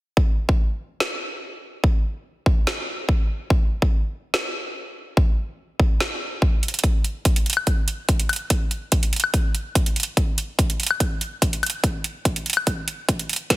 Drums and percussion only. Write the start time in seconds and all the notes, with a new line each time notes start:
0.17 kick
0.49 kick
1.00 snare
1.84 kick
2.46 kick
2.67 snare
3.09 kick
3.50 kick
3.82 kick
4.34 snare
5.17 kick
5.80 kick
6.00 snare
6.42 kick
6.63 closed hi-hat
6.68 closed hi-hat
6.74 closed hi-hat
6.79 closed hi-hat
6.84 kick, closed hi-hat
7.04 closed hi-hat
7.25 kick, closed hi-hat
7.36 closed hi-hat
7.46 closed hi-hat
7.50 closed hi-hat
7.53 closed hi-hat, high woodblock
7.67 kick, closed hi-hat
7.88 closed hi-hat
8.09 kick, closed hi-hat
8.20 closed hi-hat
8.29 closed hi-hat, high woodblock
8.33 closed hi-hat
8.36 closed hi-hat
8.50 kick, closed hi-hat
8.71 closed hi-hat
8.92 kick, closed hi-hat
9.03 closed hi-hat
9.13 closed hi-hat
9.16 closed hi-hat
9.20 closed hi-hat
9.24 high woodblock
9.34 kick, closed hi-hat
9.55 closed hi-hat
9.75 kick, closed hi-hat
9.86 closed hi-hat
9.96 closed hi-hat
10.00 closed hi-hat
10.03 closed hi-hat
10.17 kick, closed hi-hat
10.38 closed hi-hat
10.59 kick, closed hi-hat
10.70 closed hi-hat
10.80 closed hi-hat
10.83 closed hi-hat
10.87 closed hi-hat
10.91 high woodblock
11.00 kick, closed hi-hat
11.21 closed hi-hat
11.42 kick, closed hi-hat
11.53 closed hi-hat
11.63 closed hi-hat, high woodblock
11.66 closed hi-hat
11.70 closed hi-hat
11.84 kick, closed hi-hat
12.04 closed hi-hat
12.25 kick, closed hi-hat
12.36 closed hi-hat
12.46 closed hi-hat
12.50 closed hi-hat
12.53 closed hi-hat, high woodblock
12.67 kick, closed hi-hat
12.88 closed hi-hat
13.09 kick, closed hi-hat
13.19 closed hi-hat
13.29 closed hi-hat
13.33 closed hi-hat
13.36 closed hi-hat
13.50 kick, snare, closed hi-hat